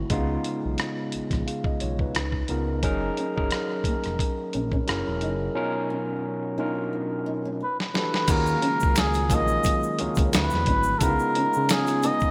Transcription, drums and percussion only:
0.10 kick medium
0.10 closed hi-hat medium
0.44 closed hi-hat medium
0.78 cross-stick medium
0.78 closed hi-hat medium
1.12 closed hi-hat medium
1.31 kick medium
1.31 cross-stick soft
1.31 closed hi-hat soft
1.48 closed hi-hat medium
1.64 kick medium
1.80 closed hi-hat medium
1.99 kick medium
2.15 cross-stick medium
2.15 closed hi-hat medium
2.32 kick medium
2.48 closed hi-hat medium
2.83 kick medium
2.83 closed hi-hat medium
3.17 closed hi-hat medium
3.38 kick medium
3.51 cross-stick medium
3.51 closed hi-hat medium
3.84 kick medium
3.84 closed hi-hat medium
4.04 cross-stick soft
4.04 closed hi-hat soft
4.19 kick medium
4.19 closed hi-hat medium
4.53 closed hi-hat medium
4.72 kick medium
4.88 cross-stick loud
4.88 closed hi-hat medium
5.21 closed hi-hat soft
7.80 snare medium
7.95 snare medium
8.14 snare medium
8.28 kick loud
8.28 closed hi-hat medium
8.28 crash medium
8.28 shaker medium
8.46 shaker soft
8.62 closed hi-hat medium
8.80 kick medium
8.80 shaker soft
8.96 finger snap medium
8.96 snare loud
8.96 closed hi-hat medium
8.96 shaker medium
9.14 closed hi-hat soft
9.14 shaker soft
9.30 kick medium
9.30 closed hi-hat medium
9.30 shaker medium
9.48 shaker soft
9.64 kick loud
9.64 closed hi-hat medium
9.64 shaker medium
9.83 shaker medium
9.99 closed hi-hat medium
10.15 kick loud
10.15 closed hi-hat soft
10.15 shaker soft
10.33 finger snap medium
10.33 snare loud
10.33 closed hi-hat medium
10.33 shaker medium
10.50 snare soft
10.50 shaker soft
10.66 kick medium
10.66 closed hi-hat medium
10.83 shaker soft
11.01 kick loud
11.01 closed hi-hat medium
11.01 shaker medium
11.19 shaker soft
11.35 closed hi-hat medium
11.53 shaker soft
11.69 finger snap medium
11.69 snare loud
11.69 closed hi-hat medium
11.69 shaker medium
11.87 closed hi-hat soft
11.87 shaker soft
12.03 closed hi-hat medium
12.03 shaker medium
12.20 kick medium
12.20 shaker soft

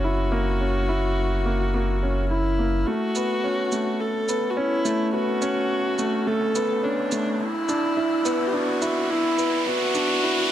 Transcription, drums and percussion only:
3.15 shaker medium
3.72 shaker medium
4.29 shaker medium
4.85 shaker medium
5.42 shaker medium
5.98 shaker medium
6.55 shaker medium
7.12 shaker medium
7.68 shaker medium
8.25 shaker medium
8.82 shaker medium
9.38 shaker medium
9.95 shaker medium

